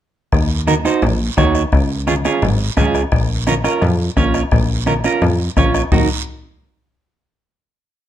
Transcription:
0.32 analog synth bass D#2, bombo low, bombo rim, high conga, long guiro
0.67 clean electric guitar D#4 F#4 A#4, bombo rim, high conga, short guiro
0.85 clean electric guitar D#4 F#4 C5, bombo rim, short guiro
1.02 analog synth bass A#1, bombo rim, high conga, low conga, long guiro
1.37 analog synth bass D#2, clean electric guitar D#4 F#4 C#5, bombo low, bombo rim, high conga, short guiro
1.55 bombo rim, short guiro
1.72 analog synth bass C#2, bombo low, bombo rim, high conga, long guiro
2.07 clean electric guitar C#4 F4 G#4, bombo rim, high conga, short guiro
2.25 clean electric guitar C#4 F4 G#4, bombo rim, short guiro
2.42 analog synth bass G#1, bombo rim, high conga, low conga, long guiro
2.77 analog synth bass C#2, clean electric guitar C#4 F4 G#4, bombo low, bombo rim, high conga, low conga, short guiro
2.94 bombo rim, short guiro
3.12 analog synth bass A#1, bombo low, bombo rim, long guiro
3.47 clean electric guitar C#4 F4 A#4, bombo rim, high conga, short guiro
3.64 clean electric guitar C#4 F4 A#4, bombo rim, short guiro
3.82 analog synth bass F2, bombo rim, high conga, low conga, long guiro
4.17 analog synth bass A#1, clean electric guitar C#4 F4 C#5, bombo low, bombo rim, high conga, short guiro
4.34 bombo rim, short guiro
4.51 analog synth bass A#1, bombo low, bombo rim, high conga, low conga, long guiro
4.86 clean electric guitar C#4 F4 A#4, bombo rim, high conga, short guiro
5.04 clean electric guitar C#4 F4 A#4, bombo rim, short guiro
5.22 analog synth bass F2, bombo rim, high conga, low conga, long guiro
5.57 analog synth bass A#1, clean electric guitar C#4 F4 C#5, bombo low, bombo rim, high conga, short guiro
5.74 bombo rim, short guiro
5.92 analog synth bass D#2, clean electric guitar D#4 F#4 A#4, bombo low, low conga, long guiro

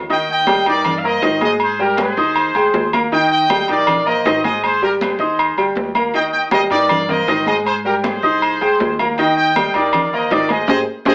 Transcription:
Already playing: upright bass D#2
0.10 upright piano D#3 D#4 D#5, trumpet section D#5 G5, high conga, low agogo
0.29 trumpet section D#5 G5, high conga
0.47 upright piano G3 G4 G5, high conga, low timbale, low agogo
0.66 upright bass G2, upright piano D#4 G5, trumpet section A#4 D5, high conga, low agogo
0.85 high conga, low conga, low agogo
0.98 trumpet section F5
1.04 upright piano A#3 A#4 A#5, trumpet section C5 D#5, high conga
1.22 upright bass G#2, upright piano D#3 D#4 D#5, high conga, low timbale, low agogo
1.41 upright piano G#3 G#4 G#5, trumpet section C5 D#5, high conga, low agogo
1.60 trumpet section G#4 C5, high conga, low agogo
1.79 upright piano G3 G4 G5, trumpet section G4 A#4, high conga
1.97 trumpet section G#4 C5, high conga, low timbale, low agogo
2.17 upright bass D#2, upright piano D#4 D#5 D#6, high conga
2.36 high conga, low agogo
2.55 upright bass D2, upright piano G#3 G#4 G5, high conga, low agogo
2.74 upright bass D#2, high conga, low timbale
2.93 upright piano A#3 A#4 A#5, high conga, low agogo
3.12 upright piano D#3 D#4 D#5, trumpet section D#5 G5, high conga, low agogo
3.31 trumpet section D#5 G5, high conga
3.50 upright piano G3 G4 G5, high conga, low timbale, low agogo
3.68 upright bass A#1, upright piano D#4 G5, trumpet section A#4 D5, high conga, low agogo
3.87 high conga, low conga, low agogo
4.06 upright piano A#3 A#4 A#5, trumpet section C5 D#5, high conga
4.25 upright bass G#1, upright piano D#3 D#4 D#5, high conga, low timbale, low agogo
4.44 upright piano G#3 G#4 G#5, trumpet section C5 D#5, high conga, low agogo
4.63 trumpet section G#4 C5, high conga, low agogo
4.82 upright piano G3 G4 G5, trumpet section G4 A#4, high conga
5.01 trumpet section G#4 C5, high conga, low timbale, low agogo
5.19 upright bass D#2, upright piano D#4 D#5 D#6, high conga
5.39 high conga, low agogo
5.57 upright bass D2, upright piano G3 G4 G5, high conga, low agogo
5.75 upright bass D#2, high conga, low timbale
5.95 upright piano A#3 A#4 A#5, high conga, low agogo
6.14 upright piano D#3 D#4 D#5, trumpet section D#5 G5, high conga, low agogo
6.33 trumpet section D#5 G5, high conga
6.51 upright piano G3 G4 G5, trumpet section A#4 D#5, high conga, low timbale, low agogo
6.70 upright bass G2, upright piano D#4 G5, trumpet section A#4 D5, high conga, low agogo
6.89 high conga, low conga, low agogo
7.09 upright piano A#3 A#4 A#5, trumpet section C5 D#5, high conga, low conga
7.27 upright bass G#2, upright piano D#3 D#4 D#5, high conga, low timbale, low agogo
7.46 upright piano G#3 G#4 G#5, trumpet section C5 D#5, high conga, low agogo
7.66 trumpet section G#4 C5, high conga, low agogo
7.84 upright piano G3 G4 G5, trumpet section G4 A#4, high conga
8.03 trumpet section G#4 C5, high conga, low timbale, low agogo
8.23 upright bass C2, upright piano D#4 D#5 D#6, high conga
8.42 high conga, low agogo
8.61 upright bass D2, upright piano G#3 G#4 G5, high conga, low agogo
8.80 upright bass D#2, high conga, low timbale
8.99 upright piano A#3 A#4 A#5, high conga, low agogo
9.17 upright piano D#3 D#4 D#5, trumpet section D#5 G5, high conga, low agogo
9.37 trumpet section D#5 G5, high conga
9.56 upright piano G3 G4 G5, high conga, low timbale, low agogo
9.74 upright bass D#2, upright piano D#4 G5, trumpet section A#4 D5, high conga, low agogo
9.93 high conga, low conga, low agogo
10.12 upright piano A#3 A#4 A#5, trumpet section C5 D#5, high conga
10.30 upright bass G#1, upright piano D#3 D#4 D#5, trumpet section A#4 D5, high conga, low timbale, low agogo
10.49 upright piano G#3 G#4 G#5, trumpet section C5 D#5, high conga, low agogo
10.68 upright bass G#1, upright piano G4 G#4 C5, trumpet section G#4 C5 D#5, high conga, high timbale
11.05 upright bass G#1, upright piano G4 G#4 C5, trumpet section G#4 C5 D#5, high conga, high timbale

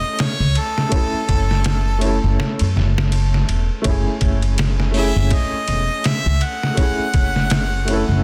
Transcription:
Already playing: felt piano A3 C#4 E4 G#4 A4, harmonica D#5
0.19 harmonica C#5, snare, ride
0.40 upright bass C#2
0.55 harmonica A4, ride
0.78 snare
0.89 felt piano A3 C#4, kick, ride
0.94 felt piano E4 A4
1.29 upright bass F#1, kick, ride
1.51 snare
1.64 snare, ride
1.98 felt piano A3 C#4, ride
2.03 felt piano E4 A4
2.24 upright bass F#1
2.40 snare
2.59 upright bass F#2, ride
2.76 upright bass F#1, snare
2.98 snare
3.12 ride
3.34 snare
3.49 upright bass E1, ride
3.82 upright bass F#1, felt piano A3 C#4, kick, ride
3.87 felt piano E4 G#4
4.21 upright bass F#1, kick, ride
4.42 ride
4.58 snare, ride
4.80 snare
4.91 felt piano A3 C#4, open hi-hat
4.96 felt piano E4 G#4, harmonica E5
5.16 upright bass F#1
5.31 harmonica D#5, kick, ride
5.68 upright bass E1, ride
6.04 harmonica E5, snare, ride
6.26 upright bass C#2
6.41 harmonica F#5, ride
6.63 snare
6.74 felt piano A3 C#4, kick, ride
6.79 felt piano E4 G#4
7.14 upright bass F#1, kick, ride
7.36 snare
7.50 snare, ride
7.85 felt piano A3 C#4, ride
7.90 felt piano E4 A4
8.08 upright bass F#1

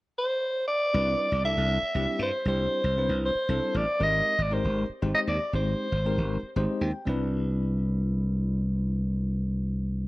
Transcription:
0.18 soprano saxophone C5
0.68 soprano saxophone D5
0.94 slap bass C2, tine electric piano G3 C4 D4 E4 B4
1.32 slap bass C2
1.44 tine electric piano G3 C4 D4 E4 A4, soprano saxophone E5
1.57 slap bass C2
1.83 muted slap bass stroke
1.95 slap bass C2, tine electric piano G3 C4 D4 E4 G4
2.19 slap bass G2, soprano saxophone C5
2.45 slap bass C2, tine electric piano G3 C4 D4 E4 G4, soprano saxophone C5
2.84 slap bass C2
2.97 tine electric piano G3 C4 D4 E4 B4
3.09 slap bass C2
3.26 soprano saxophone C5
3.49 slap bass C2, tine electric piano G3 C4 D4 E4 A4
3.74 slap bass A1, soprano saxophone D5
3.99 slap bass G#1, tine electric piano G#3 C4 D#4 G4 A#4, soprano saxophone D#5
4.38 slap bass G#1, soprano saxophone D5
4.51 tine electric piano G#3 C4 D#4 G4 A#4, soprano saxophone C5
4.64 slap bass G#1
4.89 muted slap bass stroke
5.02 slap bass G#1, tine electric piano G#3 C4 D#4 G4 C5
5.14 soprano saxophone D#5
5.27 slap bass D#2, soprano saxophone D5
5.53 slap bass G#1, tine electric piano G#3 C4 D#4 G4 C5, soprano saxophone C5
5.92 slap bass G#1
6.05 tine electric piano G#3 C4 D#4 G4 A#4
6.18 slap bass G#1
6.43 muted slap bass stroke
6.56 slap bass G#1, tine electric piano G#3 C4 D#4 G4 C5 D#5
6.81 slap bass D#2, tine electric piano G5
7.05 slap bass C2, tine electric piano G3 C4 D4 E4
7.09 tine electric piano B4

